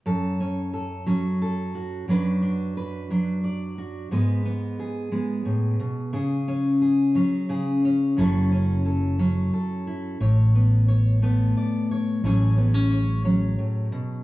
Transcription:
<<
  \new Staff \with { instrumentName = "Steel-string acoustic guitar" } { \time 3/4 \key fis \minor \tempo 4 = 89 << { a'8 cis'8 a'8 cis'8 a'8 fis'8 | <fis d' fis' b'>8 d'8 b'8 d'8 d''8 fis'8 | <gis b b'>8 b8 gis'8 b4. | gis'8 cis'8 gis'8 cis'8 gis'8 cis'8 |
<fis cis' e' a'>8 cis'8 a'8 cis'8 a'8 e'8 | cis''8 b8 cis''8 b8 d''8 cis''8 | <fis cis' gis' cis''>8 b16 cis'16 cis''8 cis'4. | } \\ { fis,4. fis4. | fis,4. fis4. | gis,4. gis8 a,8 b,8 | cis4. fis8 cis4 |
fis,4. fis4. | a,4. a4. | a,4. fis8 a,8 b,8 | } >> }
  \new Staff \with { instrumentName = "Fretless electric bass" } { \clef bass \time 3/4 \key fis \minor r2. | r2. | r2. | r2. |
fis,,2 r4 | a,,2 r4 | a,,2 r4 | }
>>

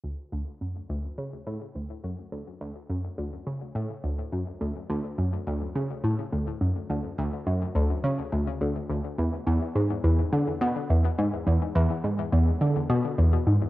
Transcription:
\new Staff \with { instrumentName = "Synth arpeggio sound" } { \clef bass \time 4/4 \key d \lydian \tempo 4 = 105 d,8 d,8 fis,8 d,8 cis8 a,8 d,8 fis,8 | d,8 d,8 fis,8 d,8 cis8 a,8 d,8 fis,8 | d,8 d,8 fis,8 d,8 cis8 a,8 d,8 fis,8 | d,8 d,8 fis,8 d,8 cis8 d,8 d,8 d,8 |
e,8 e,8 gis,8 e,8 d8 b,8 e,8 gis,8 | e,8 e,8 gis,8 e,8 d8 b,8 e,8 gis,8 | }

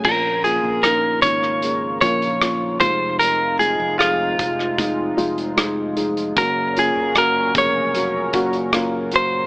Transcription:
<<
  \new Staff \with { instrumentName = "Clean electric guitar" } { \time 4/4 \key bes \minor \tempo 4 = 76 bes'8 aes'8 bes'8 des''4 des''4 c''8 | bes'8 aes'8 f'4. r4. | bes'8 aes'8 bes'8 des''2 c''8 | }
  \new Staff \with { instrumentName = "Felt piano" } { \time 4/4 \key bes \minor <bes des' f'>8 <bes des' f'>8 <bes des' ees'>8 <bes des' ees'>8 <bes des' aes'>8 <bes des' f'>8 <bes des' f'>8 <aes ees' f'>8~ | <aes ees' f'>8 <aes ees' aes'>8 <aes ees' aes'>8 <aes ees' f'>8 <aes ees' aes'>8 <aes ees' f'>8 <aes ees' aes'>8 <aes ees' aes'>8 | <bes des' ges'>8 <bes des' f'>8 <bes des' ges'>8 <bes des' aes'>8 <bes des' ges'>8 <bes des' ges'>8 <bes des' f'>8 <bes des' ges'>8 | }
  \new Staff \with { instrumentName = "Felt piano" } { \clef bass \time 4/4 \key bes \minor <bes, f>4. r2 c8~ | c4 r2. | des4. r2 r8 | }
  \new Staff \with { instrumentName = "Analog synth pad" } { \clef bass \time 4/4 \key bes \minor << { <des bes f' bes'>2.~ <des bes f' bes'>8 <c aes ees'>8~ | <c aes ees'>1 | <bes, ges des' bes'>1 | } \\ { f1~ | f1 | des1 | } >> }
  \new Staff \with { instrumentName = "Fretless electric bass" } { \clef bass \time 4/4 \key bes \minor bes,,8. bes,,8. aes,,4 bes,,4 f,,8~ | f,,8. f,,8. f,,4 f,,4. | ges,,8. ges,,8. f,,4 ges,,4. | }
  \new DrumStaff \with { instrumentName = "Drums" } \drummode { \time 4/4 <cymc bd>8 hh8 <hh ss>8 <hh bd>16 ss16 hh8 <hh bd>16 hh16 <hh ss>8 <hh bd>8 | hh8 hh8 <hh ss>8 <hh bd>16 ss16 <hh bd>8 hh16 hh16 <hh ss>8 hh16 hh16 | <hh bd>8 hh8 <hh ss>8 <hh bd>8 hh8 <hh bd>16 hh16 <hh ss>8 hh8 | }
>>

